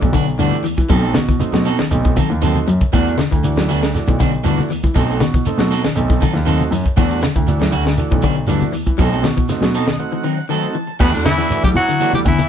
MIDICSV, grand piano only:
0, 0, Header, 1, 2, 480
1, 0, Start_track
1, 0, Key_signature, 1, "minor"
1, 0, Tempo, 504626
1, 856, Time_signature, 4, 2, 24, 8
1, 11879, End_track
2, 0, Start_track
2, 0, Title_t, "Grand piano"
2, 0, Program_c, 0, 0
2, 23, Note_on_c, 0, 35, 80
2, 323, Note_off_c, 0, 35, 0
2, 370, Note_on_c, 0, 43, 78
2, 479, Note_off_c, 0, 43, 0
2, 617, Note_on_c, 0, 40, 20
2, 680, Note_off_c, 0, 40, 0
2, 738, Note_on_c, 0, 52, 75
2, 837, Note_off_c, 0, 52, 0
2, 854, Note_on_c, 0, 35, 95
2, 1059, Note_off_c, 0, 35, 0
2, 1082, Note_on_c, 0, 47, 80
2, 1293, Note_off_c, 0, 47, 0
2, 1457, Note_on_c, 0, 47, 85
2, 1665, Note_off_c, 0, 47, 0
2, 1699, Note_on_c, 0, 35, 22
2, 1758, Note_off_c, 0, 35, 0
2, 1816, Note_on_c, 0, 35, 99
2, 2022, Note_off_c, 0, 35, 0
2, 2188, Note_on_c, 0, 39, 82
2, 2391, Note_off_c, 0, 39, 0
2, 2542, Note_on_c, 0, 42, 78
2, 2648, Note_off_c, 0, 42, 0
2, 2791, Note_on_c, 0, 40, 98
2, 2992, Note_off_c, 0, 40, 0
2, 3161, Note_on_c, 0, 38, 80
2, 3458, Note_off_c, 0, 38, 0
2, 3504, Note_on_c, 0, 38, 78
2, 3709, Note_off_c, 0, 38, 0
2, 3882, Note_on_c, 0, 35, 76
2, 4179, Note_off_c, 0, 35, 0
2, 4225, Note_on_c, 0, 43, 83
2, 4332, Note_off_c, 0, 43, 0
2, 4465, Note_on_c, 0, 40, 22
2, 4528, Note_off_c, 0, 40, 0
2, 4597, Note_on_c, 0, 52, 71
2, 4693, Note_off_c, 0, 52, 0
2, 4712, Note_on_c, 0, 35, 92
2, 4914, Note_off_c, 0, 35, 0
2, 4947, Note_on_c, 0, 47, 77
2, 5151, Note_off_c, 0, 47, 0
2, 5304, Note_on_c, 0, 47, 89
2, 5512, Note_off_c, 0, 47, 0
2, 5559, Note_on_c, 0, 35, 20
2, 5615, Note_off_c, 0, 35, 0
2, 5665, Note_on_c, 0, 35, 96
2, 5870, Note_off_c, 0, 35, 0
2, 6027, Note_on_c, 0, 39, 87
2, 6234, Note_off_c, 0, 39, 0
2, 6380, Note_on_c, 0, 42, 82
2, 6490, Note_off_c, 0, 42, 0
2, 6634, Note_on_c, 0, 40, 98
2, 6836, Note_off_c, 0, 40, 0
2, 7001, Note_on_c, 0, 38, 81
2, 7299, Note_off_c, 0, 38, 0
2, 7341, Note_on_c, 0, 38, 86
2, 7548, Note_off_c, 0, 38, 0
2, 7720, Note_on_c, 0, 35, 81
2, 8019, Note_off_c, 0, 35, 0
2, 8061, Note_on_c, 0, 43, 88
2, 8171, Note_off_c, 0, 43, 0
2, 8300, Note_on_c, 0, 40, 21
2, 8365, Note_off_c, 0, 40, 0
2, 8431, Note_on_c, 0, 52, 76
2, 8529, Note_off_c, 0, 52, 0
2, 8548, Note_on_c, 0, 35, 97
2, 8752, Note_off_c, 0, 35, 0
2, 8781, Note_on_c, 0, 47, 79
2, 8987, Note_off_c, 0, 47, 0
2, 9138, Note_on_c, 0, 47, 85
2, 9347, Note_off_c, 0, 47, 0
2, 9391, Note_on_c, 0, 35, 22
2, 9448, Note_off_c, 0, 35, 0
2, 10463, Note_on_c, 0, 40, 106
2, 10562, Note_off_c, 0, 40, 0
2, 10576, Note_on_c, 0, 40, 85
2, 10783, Note_off_c, 0, 40, 0
2, 11169, Note_on_c, 0, 52, 86
2, 11481, Note_off_c, 0, 52, 0
2, 11546, Note_on_c, 0, 40, 22
2, 11602, Note_off_c, 0, 40, 0
2, 11656, Note_on_c, 0, 40, 93
2, 11761, Note_off_c, 0, 40, 0
2, 11786, Note_on_c, 0, 40, 22
2, 11841, Note_off_c, 0, 40, 0
2, 11879, End_track
0, 0, End_of_file